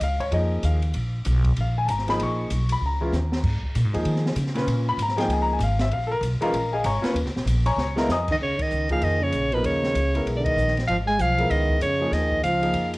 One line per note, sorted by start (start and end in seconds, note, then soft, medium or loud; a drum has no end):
0.00 0.31 C#2 medium
0.00 0.21 F5 loud
0.00 hi-hat pedal medium
0.00 ride medium
0.20 0.32 C#5 medium
0.20 kick medium
0.20 ride medium
0.31 0.62 F2 medium
0.31 0.78 F3 medium
0.31 0.79 A#3 medium
0.31 0.79 D#4 medium
0.31 0.79 G#4 medium
0.31 0.62 D#5 medium
0.31 ride medium
0.63 0.94 D#2 medium
0.63 1.11 F5 medium
0.63 hi-hat pedal medium
0.63 ride medium
0.82 ride soft
0.94 1.25 A#1 medium
0.94 ride medium
1.25 1.56 B1 loud
1.25 hi-hat pedal medium
1.25 ride medium
1.45 kick medium
1.45 ride medium
1.57 1.87 A#1 medium
1.57 ride medium
1.61 1.78 F5 medium
1.78 1.89 G#5 loud
1.86 2.18 G#1 loud
1.86 1.88 A5 medium
1.86 hi-hat pedal medium
1.86 ride medium
1.90 2.08 A#5 medium
1.99 snare soft
2.07 2.48 F3 medium
2.07 2.48 A#3 medium
2.07 2.48 D#4 medium
2.07 2.49 G#4 medium
2.07 2.20 B5 loud
2.07 snare soft
2.07 ride soft
2.20 2.50 A#1 medium
2.20 2.68 C#6 loud
2.20 ride medium
2.50 2.80 B1 loud
2.50 hi-hat pedal medium
2.50 ride medium
2.69 2.82 B5 loud
2.69 ride medium
2.81 3.11 C#2 medium
2.86 3.72 A#5 medium
3.01 3.11 E3 medium
3.01 3.11 G#3 medium
3.01 3.11 C#4 medium
3.01 3.12 F4 medium
3.12 3.42 D#2 loud
3.12 snare soft
3.12 hi-hat pedal medium
3.32 snare medium
3.43 3.61 G#2 medium
3.43 kick medium
3.43 crash medium
3.63 muted upright bass stroke soft
3.63 kick medium
3.75 3.85 A#2 loud
3.75 hi-hat pedal medium
3.75 ride medium
3.85 3.94 G#2 medium
3.93 4.04 D#2 medium
3.93 4.34 F3 medium
3.93 4.34 A#3 medium
3.93 4.34 D#4 medium
3.93 4.34 G#4 medium
3.93 ride medium
4.05 4.35 D#3 medium
4.05 ride medium
4.16 snare soft
4.26 snare medium
4.36 4.66 C#3 loud
4.36 hi-hat pedal medium
4.36 ride medium
4.47 snare soft
4.54 4.95 A#2 medium
4.54 4.96 C#4 medium
4.54 4.96 F4 medium
4.54 4.96 B4 medium
4.54 snare soft
4.54 ride soft
4.67 4.96 A#2 medium
4.67 ride medium
4.89 4.99 B5 loud
4.97 5.27 G#2 medium
4.97 hi-hat pedal medium
4.97 ride medium
5.02 5.19 A#5 loud
5.09 snare soft
5.16 5.57 F3 medium
5.16 5.57 A#3 medium
5.16 5.58 D#4 medium
5.16 5.58 G#4 medium
5.16 5.30 G5 loud
5.16 snare soft
5.16 ride medium
5.28 5.58 C#2 medium
5.28 ride medium
5.33 5.41 G#5 medium
5.42 5.51 A#5 loud
5.53 5.62 G#5 medium
5.59 5.90 G#1 loud
5.59 hi-hat pedal medium
5.59 ride medium
5.64 5.81 F5 medium
5.79 5.92 E5 loud
5.79 snare medium
5.79 ride soft
5.91 6.20 A#1 medium
5.91 6.11 F5 loud
5.91 ride medium
6.07 6.09 A4 medium
6.12 6.18 A#4 loud
6.21 6.39 B1 loud
6.21 hi-hat pedal medium
6.21 ride medium
6.41 6.52 E3 medium
6.41 6.52 G#3 medium
6.41 6.52 C#4 medium
6.41 6.53 F4 loud
6.41 6.71 A#4 medium
6.41 6.71 D#5 medium
6.41 6.71 F5 medium
6.41 6.71 A#5 loud
6.41 muted upright bass stroke soft
6.41 ride medium
6.53 6.83 A#1 medium
6.53 ride medium
6.73 6.85 G#4 medium
6.73 6.85 D#5 medium
6.73 6.85 F5 medium
6.73 6.84 G#5 medium
6.84 7.02 G#1 loud
6.84 7.14 C#5 medium
6.84 7.14 G#5 medium
6.84 7.14 A#5 medium
6.84 7.14 C#6 medium
6.84 hi-hat pedal medium
6.84 ride medium
7.02 7.13 A#3 medium
7.02 7.13 C#4 medium
7.02 7.13 F4 medium
7.02 7.14 B4 medium
7.02 muted upright bass stroke soft
7.02 snare medium
7.02 ride medium
7.14 7.25 D#2 medium
7.14 ride medium
7.25 7.35 C#2 medium
7.25 snare soft
7.35 7.45 A#1 medium
7.35 snare medium
7.46 7.76 A#1 loud
7.46 hi-hat pedal medium
7.46 ride medium
7.66 7.95 C#5 medium
7.66 7.95 G#5 medium
7.66 7.95 A#5 medium
7.66 7.95 C#6 loud
7.66 ride medium
7.76 8.07 C#2 medium
7.76 snare medium
7.96 8.07 G#3 medium
7.96 8.07 B3 medium
7.96 8.07 E4 medium
7.96 8.08 A#4 loud
7.96 8.09 D#5 medium
7.96 8.08 F5 medium
7.96 8.09 A#5 medium
7.96 snare medium
8.09 8.39 F2 loud
8.09 8.34 D#5 medium
8.09 8.34 G#5 medium
8.09 8.33 D#6 medium
8.09 snare medium
8.09 hi-hat pedal medium
8.13 8.34 A#5 medium
8.28 8.35 D#3 medium
8.28 kick medium
8.28 crash medium
8.32 8.36 D#5 medium
8.40 8.58 D#2 medium
8.40 8.61 C#3 medium
8.40 8.64 C#5 medium
8.59 8.90 D#3 medium
8.59 8.91 D#5 medium
8.59 muted upright bass stroke soft
8.59 kick medium
8.59 ride medium
8.71 9.01 C#2 medium
8.71 hi-hat pedal medium
8.89 9.30 F3 medium
8.89 9.03 F3 medium
8.89 9.30 A#3 medium
8.89 9.31 D#4 medium
8.89 9.31 G#4 medium
8.89 9.06 F5 medium
8.89 kick medium
8.89 ride soft
9.02 9.32 F2 medium
9.02 9.23 D#3 medium
9.02 9.25 D#5 medium
9.02 ride medium
9.21 9.54 C#3 medium
9.21 9.56 C#5 medium
9.33 9.63 A#1 medium
9.33 hi-hat pedal soft
9.33 ride medium
9.52 9.65 B2 medium
9.52 9.93 F3 medium
9.52 9.93 A#3 medium
9.52 9.93 D#4 medium
9.52 9.94 A#4 medium
9.52 9.68 B4 medium
9.52 ride soft
9.64 9.94 D#2 medium
9.64 10.26 C#3 medium
9.64 10.27 C#5 medium
9.64 ride medium
9.84 snare soft
9.95 10.25 C#2 medium
9.95 hi-hat pedal soft
9.95 ride medium
10.15 10.55 G#3 medium
10.15 10.55 B3 medium
10.15 10.55 E4 medium
10.15 10.56 A#4 medium
10.15 ride soft
10.26 10.55 B1 medium
10.26 ride medium
10.37 10.47 D3 medium
10.37 10.46 D5 medium
10.44 10.76 D#3 medium
10.44 10.76 D#5 medium
10.44 kick medium
10.44 ride medium
10.56 10.86 A#1 medium
10.56 hi-hat pedal medium
10.68 snare soft
10.77 snare soft
10.77 ride soft
10.88 11.18 G#1 medium
10.88 10.97 F3 medium
10.88 10.96 F5 medium
10.88 ride medium
11.07 11.21 G#3 medium
11.07 11.23 G#5 loud
11.19 11.49 B1 medium
11.19 11.53 F3 medium
11.19 11.52 F5 loud
11.19 hi-hat pedal medium
11.19 ride medium
11.38 11.79 G#3 medium
11.38 11.79 B3 medium
11.38 11.79 E4 medium
11.38 11.79 A#4 medium
11.38 ride soft
11.50 11.80 C#2 medium
11.50 11.82 D#3 medium
11.50 11.81 D#5 medium
11.50 ride medium
11.69 kick medium
11.80 12.11 F2 medium
11.80 12.15 C#3 medium
11.80 12.15 C#5 medium
11.80 hi-hat pedal medium
11.80 ride medium
12.00 12.41 F3 medium
12.00 12.41 A#3 medium
12.00 12.41 D#4 medium
12.00 12.41 G#4 medium
12.11 12.42 D#2 medium
12.11 12.44 D#3 medium
12.11 12.43 D#5 medium
12.11 snare soft
12.11 ride medium
12.31 kick medium
12.43 12.73 C#2 medium
12.43 12.90 F3 medium
12.43 12.90 F5 medium
12.43 hi-hat pedal medium
12.43 ride medium
12.61 12.98 F3 medium
12.61 12.98 A#3 medium
12.61 12.98 D#4 medium
12.61 12.98 G#4 medium
12.61 ride soft
12.74 12.98 F2 medium
12.74 ride medium
12.94 ride medium